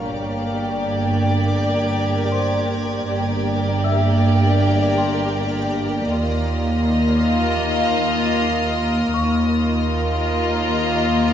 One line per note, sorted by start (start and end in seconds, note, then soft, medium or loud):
0.00 1.14 A#4 soft
0.00 1.14 A#5 soft
0.04 3.07 G1 medium
0.04 3.07 G2 soft
0.04 3.04 A#3 soft
0.04 3.08 G4 soft
0.04 3.05 G4 soft
0.04 3.05 A#4 soft
0.04 3.04 D5 medium
0.04 3.08 D5 soft
0.04 5.70 D6 soft
0.81 5.70 G#6 soft
2.32 4.56 C5 soft
2.32 4.56 C6 medium
3.08 6.08 G1 medium
3.08 6.08 G2 medium
3.08 6.08 A#3 medium
3.08 6.08 G4 medium
3.08 6.08 G4 soft
3.08 6.08 A#4 medium
3.08 6.08 D5 medium
3.08 6.08 D5 soft
3.84 6.08 E5 soft
3.84 6.08 E6 medium
4.98 7.22 C6 medium
6.11 9.12 D#2 medium
6.11 9.12 A#3 medium
6.11 9.12 F4 medium
6.11 9.11 A#4 soft
6.11 9.11 D#5 medium
6.11 9.13 D#5 soft
6.11 9.14 F5 medium
6.11 11.33 D#6 medium
6.11 11.02 F6 medium
6.11 10.26 A#6 medium
9.14 11.33 D#2 medium
9.14 11.33 A#3 medium
9.14 11.33 F4 medium
9.14 11.33 A#4 medium
9.14 11.33 D#5 medium
9.14 11.33 F5 medium
9.14 11.33 C#6 medium